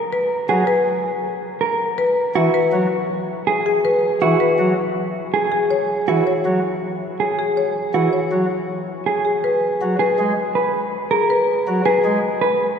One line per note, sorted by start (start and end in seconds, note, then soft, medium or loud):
0.13 0.36 B4 medium
0.49 0.63 F#3 medium
0.49 0.73 G#4 medium
0.49 0.73 F#5 medium
0.67 0.92 B4 medium
1.61 1.85 A#4 medium
1.98 2.22 B4 medium
2.35 2.49 E3 medium
2.35 2.60 F#4 medium
2.35 2.60 E5 medium
2.54 2.78 B4 medium
2.72 2.86 F#3 medium
3.47 3.71 G#4 medium
3.66 3.90 G#4 medium
3.85 4.09 B4 medium
4.21 4.36 E3 medium
4.21 4.46 F#4 medium
4.21 4.46 E5 medium
4.40 4.65 B4 medium
4.59 4.73 F#3 medium
5.34 5.58 G#4 medium
5.52 5.76 G#4 medium
5.71 5.95 C#5 medium
6.08 6.22 E3 medium
6.08 6.32 F#4 medium
6.08 6.32 F#5 medium
6.27 6.51 C#5 medium
6.45 6.59 F#3 medium
7.20 7.44 G#4 soft
7.39 7.63 G#4 medium
7.57 7.81 C#5 medium
7.94 8.08 E3 medium
7.94 8.19 F#4 soft
7.94 8.19 F#5 soft
8.13 8.37 C#5 medium
8.32 8.46 F#3 medium
9.06 9.30 G#4 soft
9.25 9.49 G#4 medium
9.44 9.68 B4 medium
9.81 9.95 F#3 medium
9.81 10.05 F#5 medium
9.99 10.24 G#4 medium
9.99 10.24 B4 medium
10.19 10.33 G#3 medium
10.55 10.79 B4 medium
11.11 11.35 G#4 medium
11.11 11.35 A#4 soft
11.30 11.54 B4 medium
11.67 11.81 F#3 medium
11.67 11.91 F#5 medium
11.85 12.10 G#4 medium
11.85 12.10 B4 medium
12.05 12.19 G#3 medium
12.41 12.66 B4 medium